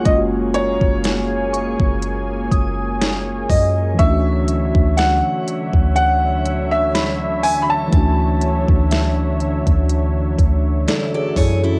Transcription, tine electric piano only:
0.01 G#3 F4
0.06 A#3 C#4
0.11 F4
0.17 F#4
3.94 E3 A3
3.99 C#4 D4
4.04 E4
4.11 F#4
7.88 E3 A3
7.93 C#4 D4
7.98 F#4
10.88 A4 D5
11.14 G#4 C#5
11.37 E4 A4
11.64 C#4 F#4

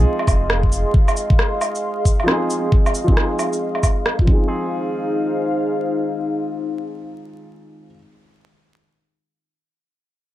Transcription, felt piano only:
Already playing: F3 C4 D#4 G#4
2.24 F3 C4
2.29 D#4 G#4
3.04 F3 C4
3.10 D#4 G#4
4.21 F3
4.25 C4 D#4
4.33 G#4

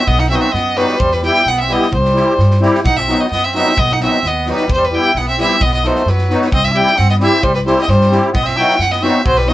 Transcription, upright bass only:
0.07 B1
0.53 F#2
1.00 E2
1.45 B1
1.92 C2
2.38 G2
2.84 B1
3.31 F#2
3.77 B1
4.23 D#2
4.68 E2
5.14 B1
5.60 B1
6.05 F#2
6.52 C2
6.99 G2
7.43 C2
7.88 G2
8.34 B1
8.79 F#2
9.26 B1

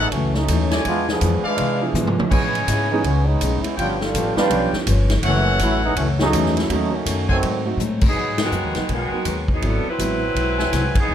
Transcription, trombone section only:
Already playing: E3 G#3 B3 D#4
0.11 E3 F#3 A3 C#4
0.35 F#3 A3 C#4 D#4
0.72 F#3 A3 C#4 E4
0.86 G#3 B3 D4 F4
1.10 F3 B3 D4 G#4
1.47 G#3 D4 F4 B4
2.29 E3 G#3 B3 C#4
2.69 G#3 B3 C#4 E4
2.91 G#3 B3 C#4 D#4
3.04 E3 G#3 B3 C#4
3.26 G#3 B3 C#4 D#4
3.63 G#3 B3 C#4 E4
3.78 G3 B3 D4 F4
4.00 G3 D4 F4 A4
4.37 G3 D4 F4 B4
5.26 E3 F#3 A3 C#4
5.62 F#3 A3 C#4 E4
5.83 E3 G#3 B3 D#4
5.97 E3 F#3 A3 C#4
6.21 F#3 A3 C#4 D#4
6.57 F#3 A3 C#4 E4
6.70 F#3 A3 C#4 D#4
6.93 D#3 F#3 A3 C#4
7.30 D#3 F#3 A3 C4

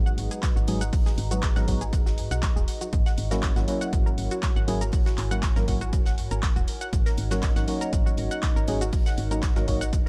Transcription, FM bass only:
Already playing: G#1
0.18 G#1
0.56 G#1
0.68 G#1
1.18 G#1
1.56 G#1
1.93 F#1
2.18 G#2
2.31 B1
2.56 D#1
2.93 G#1
3.18 G#1
3.56 G#1
3.93 G#1
4.18 G#1
4.56 G#1
4.68 G#1
5.18 G#1
5.56 G#1
5.93 F#1
6.18 G#2
6.31 G#1
6.56 D#1
6.93 G#1
7.18 G#1
7.56 G#1
7.93 G#1
8.18 G#1
8.56 G#1
8.68 G#1
9.18 G#1
9.56 G#1
9.93 F#1

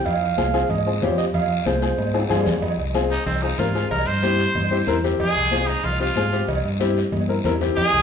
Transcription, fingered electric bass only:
0.05 F2
0.38 C2
0.70 G#2
1.02 F2
1.34 F2
1.66 C2
1.98 G#2
2.30 G2
2.46 F2
2.63 F2
2.78 C2
3.26 C2
3.59 G#2
3.91 C2
4.07 G2
4.56 G2
4.87 E2
5.20 F2
5.36 C2
5.84 C2
6.16 G#2
6.48 C2
6.64 G2
7.13 G2
7.44 E2
7.77 F2
7.93 C2

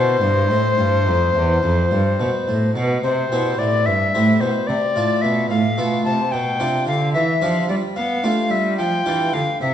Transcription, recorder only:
Already playing: C5
3.03 C5
3.59 D5
3.86 E5
4.41 C5
4.67 D5
5.22 E5
5.50 F5
6.05 A5
6.32 G5
6.88 F5
7.13 E5
7.69 D5
7.96 F5
8.51 E5
8.77 G5
9.34 F5
9.61 E5

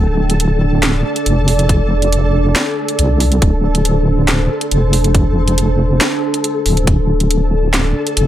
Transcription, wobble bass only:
Already playing: D1
1.26 F1
2.99 C2
3.42 D1
4.71 F1
6.66 D1
6.87 D1
8.17 F1

